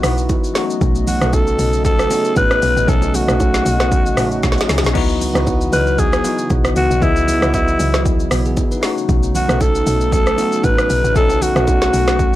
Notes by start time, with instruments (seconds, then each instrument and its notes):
Already playing: analog synth pad C#3 E3 F#3 B3 F#4, tine electric piano B3 D#4 E4 F#4 D#5, downlifter
0.02 log drum bass B1, tine electric piano B3 D#4 E4 F#4, cross-stick, open hi-hat, high bongo, low bongo, shaker
0.18 shaker
0.29 kick, high bongo, shaker
0.44 shaker
0.54 analog synth pad F#3 A3 D#5, tine electric piano A3 C#4 D#4 F#4, snare, open hi-hat, shaker
0.70 shaker
0.81 log drum bass B1, kick, low conga, shaker
0.95 shaker
1.07 alto saxophone F#4, open hi-hat, low conga, shaker
1.20 log drum bass B1, tine electric piano A3 C#4 D#4 A4, cross-stick, low bongo, shaker
1.33 alto saxophone A4, kick, high bongo, shaker
1.47 shaker
1.59 log drum bass B1, open hi-hat, shaker
1.73 shaker
1.85 alto saxophone A4, kick, low conga, shaker
1.99 cross-stick, shaker
2.09 tine electric piano A3 C#4 D#4 F#4, open hi-hat, high bongo, low bongo, shaker
2.19 tine electric piano G#4
2.25 shaker
2.36 log drum bass A1, alto saxophone B4, kick, high bongo, shaker
2.51 cross-stick, shaker
2.62 log drum bass B1, open hi-hat, shaker
2.77 log drum bass A1, shaker
2.87 log drum bass B1, tine electric piano A3 C#4 D#4 A4, alto saxophone A4, kick, low conga, shaker
3.02 high bongo, shaker
3.14 alto saxophone F#4, open hi-hat, low bongo, low conga, shaker
3.27 log drum bass B1, tine electric piano A3 C#4 D#4 F#4, cross-stick, low bongo, shaker
3.40 kick, high bongo, shaker
3.54 snare, shaker
3.66 log drum bass B1, open hi-hat, shaker
3.80 cross-stick, snare, shaker
3.92 kick, low conga, shaker
4.06 shaker
4.16 log drum bass A1, tine electric piano A3 C#4 D#4, cross-stick, mid tom, open hi-hat, high bongo, low bongo, shaker
4.20 tine electric piano F#4
4.31 shaker
4.43 log drum bass B1, kick, snare, high bongo, shaker
4.52 snare
4.58 snare, shaker
4.68 log drum bass C#2, tine electric piano A3 C#4 D#4 G#4, snare, open hi-hat, shaker
4.78 snare
4.83 log drum bass B1, snare, shaker
4.94 log drum bass C#2, analog synth pad E3, tine electric piano B3 D#4 E4 F#4, kick, crash, low conga
5.09 shaker
5.21 open hi-hat, low conga, shaker
5.34 log drum bass C#2, tine electric piano B3 D#4 E4 F#4, cross-stick, low bongo, shaker
5.47 kick, high bongo, shaker
5.61 shaker
5.72 log drum bass C#2, alto saxophone B4, open hi-hat, shaker
5.87 shaker
5.99 alto saxophone G#4, kick, low conga, shaker
6.13 cross-stick, shaker
6.23 tine electric piano B3 D#4 E4 F#4, open hi-hat, high bongo, low bongo, shaker
6.38 shaker
6.50 log drum bass B1, kick, high bongo, shaker
6.65 cross-stick, shaker
6.76 log drum bass C#2, alto saxophone F#4, open hi-hat, shaker
6.90 log drum bass B1, shaker
7.01 log drum bass C#2, tine electric piano B3 E4 G#4 D#5, analog synth pad E4, alto saxophone E4, kick, low conga, shaker
7.16 shaker
7.28 open hi-hat, low conga, shaker
7.41 log drum bass C#2, tine electric piano B3 E4 F#4 D#5, cross-stick, low bongo, shaker
7.54 alto saxophone E4, kick, high bongo, shaker
7.68 shaker
7.79 log drum bass C#2, open hi-hat, shaker
7.94 cross-stick, snare, shaker
8.06 kick, low conga, shaker
8.20 shaker
8.31 log drum bass B1, tine electric piano F#4, cross-stick, open hi-hat, high bongo, low bongo, shaker
8.45 tine electric piano B3 G#4, shaker
8.57 kick, high bongo, shaker
8.72 tine electric piano D#4 B4, shaker
8.81 tine electric piano A3 C#4 D#4 F#4, analog synth pad A3 B3 D#4, snare, open hi-hat, shaker
8.98 shaker
9.09 log drum bass B1, kick, low conga, shaker
9.23 shaker
9.35 alto saxophone F#4, open hi-hat, low conga, shaker
9.47 log drum bass B1, tine electric piano A3 C#4 D#4 A4, cross-stick, low bongo, shaker
9.61 alto saxophone A4, kick, high bongo, shaker
9.75 shaker
9.87 log drum bass B1, open hi-hat, shaker
10.01 shaker
10.12 alto saxophone A4, kick, low conga, shaker
10.27 cross-stick, shaker
10.37 tine electric piano A3 C#4 D#4 F#4, open hi-hat, high bongo, low bongo, shaker
10.52 shaker
10.64 log drum bass A1, alto saxophone B4, kick, high bongo, shaker
10.78 cross-stick, shaker
10.90 log drum bass B1, open hi-hat, shaker
11.04 log drum bass A1, shaker
11.14 log drum bass B1, tine electric piano A3 C#4 D#4 A4, alto saxophone A4, kick, low conga, shaker
11.30 high bongo, shaker
11.42 alto saxophone F#4, open hi-hat, low conga, shaker
11.54 log drum bass B1, tine electric piano A3 C#4 D4, cross-stick, low bongo, shaker
11.58 tine electric piano F#4
11.63 tine electric piano D#4
11.67 kick, high bongo, shaker
11.82 snare, shaker
11.93 log drum bass B1, open hi-hat, shaker
12.07 cross-stick, snare, shaker
12.19 kick, low conga, shaker